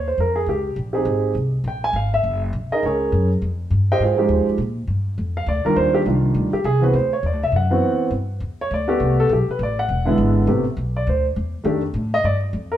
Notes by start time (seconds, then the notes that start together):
Already playing: D#2
0.08 C5
0.18 F2 A#4
0.36 G#4
0.46 C#2 G4
0.76 A#1
0.93 C4 D#4 G4 G#4
1.05 G#1
1.35 C2
1.64 A#1 G5
1.84 G#5
1.93 G#1 F5
2.14 E5
2.23 F#1
2.53 A#1
2.70 D#4 G#4 A#4 D#5, muted upright bass stroke
2.83 C#2 C#4 G#4 A#4 C#5
3.12 F#2
3.42 F2
3.70 G2
3.92 G4 C5 D#5 G5
4.00 G#2 F4 G#4 C5 F5
4.17 F3 G#3 D#4 G4
4.29 D#2
4.47 muted upright bass stroke
4.58 A#2
4.87 G2
5.18 F2
5.37 F5
5.46 D2 D5
5.65 D#3 G3 D4 F4 A#4, muted upright bass stroke
5.76 D#2 C5
5.94 G4
6.05 C2 D#3 G3 D4 F4
6.34 D2
6.53 G4, muted upright bass stroke
6.64 C2 G#4
6.81 E3 B3 C4 F#4 B4
6.93 D2 C5
7.13 C#5
7.23 E2 D5
7.33 D2
7.43 C2 E5
7.52 F#2
7.56 F#5
7.70 E3 B3 C4 F#4
8.11 G2
8.40 E2
8.61 C#5
8.71 D2 D5
8.88 A3 B3 F#4 G4
9.00 C2
9.20 A4
9.29 B1 G4
9.47 B4, muted upright bass stroke
9.59 A1
9.63 D5
9.79 F#5
9.89 E1
10.05 D3 G#3 B3 E4
10.18 G#1
10.47 A1 C3 A3 B3 G4
10.77 B1
10.97 D5
11.07 D2 C5
11.36 E2
11.64 F2 D#3 A3 D4 G4
11.94 A2
12.14 D#5
12.24 G2 D5
12.53 F2
12.72 A#4